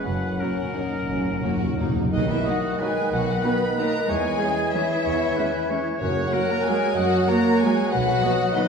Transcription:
0.05 F#1 F#2 F#3 C#4 B4 F#5
0.21 F#2
0.29 F#2
0.37 F#2 F#3 A#3 C#4 A#4
0.45 F#2
0.54 F#2
0.62 F#2
0.70 F#2
0.76 F#2 F#3 A#3 D#4
0.86 F#2
0.94 F#2
1.02 F#2
1.09 F#1 F#2 C#4
1.17 F#2
1.24 F#2
1.33 F#2
1.41 F#2 F#3 A#3 F#4
1.49 F#2
1.57 F#2
1.64 F#2
1.73 F#2
1.79 F#2 F#3 A#3 D#4
1.89 F#2
1.96 F#2
2.03 F#2
2.12 B1 D#3 D#4 D#5 F#6
2.29 E3 E4 E5
2.45 F#3 D#4 F#4 D#5 F#5
2.79 F#3 G#3 D#4 G#4 B4 G#5
3.11 B1 F#3 F#4 F#5
3.43 F#3 B3 D#4 B4 B5
3.77 F#3 A#3 D#4 A#4 A#5
4.09 E2 E3 G#3 G#4 C#5 G#5 G#6
4.41 G#3 C#4 G#4
4.73 E3 G#3 C#4 E4 C#5 E5
5.05 E2 C#5
5.36 G#3 C#4 B4
5.70 G#3 C#4 C#5
6.00 F#2 C#3 F#3 C#4 A#4 C#5 F#6
6.31 F#3 A#3 F#4 A#4 F#5
6.48 A#3 A#4 A#5
6.64 F#3 G#3 A#3 G#4 G#5
6.96 F#2 F#3 F#4 D#5 F#5
7.28 F#3 A#3 A#4 C#5 A#5
7.61 F#3 G#3 A#3 G#4 G#5
7.92 B1 F#3 F#4 B4 F#5 F#6
8.23 F#3 B3 D#5
8.54 D#3 F#3 B3 D#4 B4 D#5

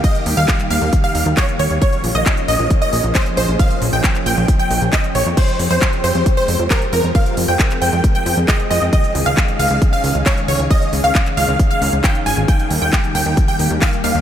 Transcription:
Already playing: D#3 G3 A#3 G4
0.04 D#5, kick, closed hi-hat
0.15 closed hi-hat
0.26 D#2, open hi-hat
0.37 D#2 F5, closed hi-hat
0.48 kick, clap, closed hi-hat
0.59 clap, closed hi-hat
0.70 D#2 F5, open hi-hat
0.82 D#2, closed hi-hat
0.93 kick, closed hi-hat
1.04 F5, closed hi-hat
1.15 D#2, open hi-hat
1.26 D#2, closed hi-hat
1.37 C#5, kick, clap, closed hi-hat
1.48 closed hi-hat
1.59 D#2 C#5, open hi-hat
1.70 D#2, closed hi-hat
1.82 F3 C#4 G#4 C#5, kick, closed hi-hat
1.93 closed hi-hat
2.04 A#1, open hi-hat
2.15 A#1 D#5, closed hi-hat
2.26 kick, clap, closed hi-hat
2.37 closed hi-hat
2.48 A#1 D#5, open hi-hat
2.59 A#1, closed hi-hat
2.70 kick, closed hi-hat
2.82 D#5, closed hi-hat
2.93 A#1, open hi-hat
3.04 A#1, closed hi-hat
3.15 C5, kick, clap, closed hi-hat
3.26 closed hi-hat
3.37 A#1 C5, open hi-hat
3.48 A#1, closed hi-hat
3.59 F5, kick, closed hi-hat
3.71 closed hi-hat
3.82 A#1, open hi-hat
3.93 A#1 G5, closed hi-hat
4.04 kick, clap, closed hi-hat
4.15 clap, closed hi-hat
4.26 A#1 G5, open hi-hat
4.37 A#1, closed hi-hat
4.48 kick, closed hi-hat
4.59 G5, closed hi-hat
4.71 A#1, open hi-hat
4.82 A#1, closed hi-hat
4.93 D#5, kick, clap, closed hi-hat
5.04 closed hi-hat
5.15 A#1 C#5, open hi-hat
5.26 F2, closed hi-hat
5.37 F3 G#3 C4 G4 C5, kick, closed hi-hat, crash
5.48 closed hi-hat
5.59 F2, open hi-hat
5.71 F2 C5, closed hi-hat
5.82 kick, clap, closed hi-hat
5.93 closed hi-hat
6.04 F2 C5, open hi-hat
6.15 F2, closed hi-hat
6.26 kick, closed hi-hat
6.37 C5, closed hi-hat
6.48 F2, open hi-hat
6.59 F2, closed hi-hat
6.70 A#4, kick, clap, closed hi-hat
6.82 closed hi-hat
6.93 F2 A#4, open hi-hat
7.04 F2, closed hi-hat
7.15 G#4 F5, kick, closed hi-hat
7.26 closed hi-hat
7.37 F2, open hi-hat
7.48 F2 G5, closed hi-hat
7.59 kick, clap, closed hi-hat
7.71 clap, closed hi-hat
7.82 F2 G5, open hi-hat
7.93 F2, closed hi-hat
8.04 kick, closed hi-hat
8.15 G5, closed hi-hat
8.26 F2, open hi-hat
8.37 F2, closed hi-hat
8.48 D#5, kick, clap, closed hi-hat
8.60 closed hi-hat
8.71 F2 D#5, open hi-hat
8.82 F2, closed hi-hat
8.93 D#3 C#4 D#5, kick, closed hi-hat
9.04 closed hi-hat
9.15 C#2, open hi-hat
9.26 C#2 F5, closed hi-hat
9.37 kick, clap, closed hi-hat
9.48 closed hi-hat
9.59 C#2 F5, open hi-hat
9.70 C#2, closed hi-hat
9.82 kick, closed hi-hat
9.93 F5, closed hi-hat
10.04 C#2, open hi-hat
10.15 C#2, closed hi-hat
10.26 C#5, kick, clap, closed hi-hat
10.37 closed hi-hat
10.48 C#2 C#5, open hi-hat
10.59 C#2, closed hi-hat
10.70 D#5, kick, closed hi-hat
10.82 closed hi-hat
10.93 C#2, open hi-hat
11.04 C#2 F5, closed hi-hat
11.15 kick, clap, closed hi-hat
11.26 clap, closed hi-hat
11.37 C#2 F5, open hi-hat
11.48 C#2, closed hi-hat
11.59 kick, closed hi-hat
11.71 F5, closed hi-hat
11.82 C#2, open hi-hat
11.93 C#2, closed hi-hat
12.04 G5, kick, clap, closed hi-hat
12.15 closed hi-hat
12.26 G#1 G#5, open hi-hat
12.37 G#1, closed hi-hat
12.48 G3 A#3 G4 G5, kick, closed hi-hat
12.59 closed hi-hat
12.71 D#2, open hi-hat
12.82 D#2 G5, closed hi-hat
12.93 kick, clap, closed hi-hat
13.04 closed hi-hat
13.15 D#2 G5, open hi-hat
13.26 D#2, closed hi-hat
13.37 kick, closed hi-hat
13.48 G5, closed hi-hat
13.59 D#2, open hi-hat
13.71 D#2, closed hi-hat
13.82 F5, kick, clap, closed hi-hat
13.93 closed hi-hat
14.04 D#2 F5, open hi-hat
14.15 D#2, closed hi-hat

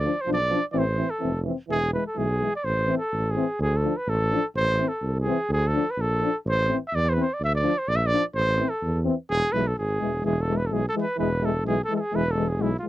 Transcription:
0.00 F3 D5
0.05 D4
0.21 C5
0.26 B1 F3 D4
0.33 D5
0.49 F3 D4
0.72 A1 E3 C4 D5
0.78 C5
0.97 E3 C4
1.10 A4
1.20 F1 E3 C4
1.43 E3 C4
1.68 E1 E3 G#3 G#4
1.93 E3 G#3 B4
2.07 A4
2.15 B1 E3 G#3 G#4
2.41 E3 G#3
2.56 D5
2.64 A1 C5
2.87 E3 C4
2.98 A4
3.13 A1
3.31 G#4
3.36 E3 C4
3.59 D2 G#4
3.76 A4
3.83 F3 D4
3.97 B4
4.06 A1 A4
4.31 F3 D4
4.55 A1 C5
4.78 E3 C4
4.88 A4
5.02 C2
5.20 G#4
5.26 E3 C4
5.49 D2 G#4
5.67 A4
5.74 F3 D4
5.90 B4
5.97 A#1 A4
6.21 F3 D4
6.45 A1 C5
6.69 E3 C4
6.87 E5
6.93 E2 D5
7.09 B4 C5
7.16 E3 C4
7.21 C5
7.34 D5
7.40 D2
7.44 E5
7.55 D5
7.63 F3 D4
7.78 C5
7.88 A#1 D5
7.96 E5
8.06 D5
8.12 F3 D4
8.35 A1 C5
8.58 E3 C4
8.69 A4
8.82 E2
9.05 E3 C4
9.30 E1 G#4
9.52 B1 E3 G#3 B4
9.67 A4
9.78 G#1 G#4
10.00 E1 E3 G#3
10.23 E1 E3 G#3 G#4
10.42 A4
10.48 E3 G#3
10.57 B4
10.66 A4
10.71 B1 E3 G#3 G#4
10.88 A4
10.94 E3 G#3
11.01 B4
11.17 E1 E3 G#3 B4
11.42 E3 G#3 A4
11.65 B1 E3 G#3 G#4
11.84 A4
11.89 E3 G#3
11.97 G#4 A4
12.12 E1 E3 G#3 B4
12.31 A4
12.36 E3 G#3
12.48 G#4
12.60 B1 E3 G#3 E4
12.79 F4
12.83 E3 G#3

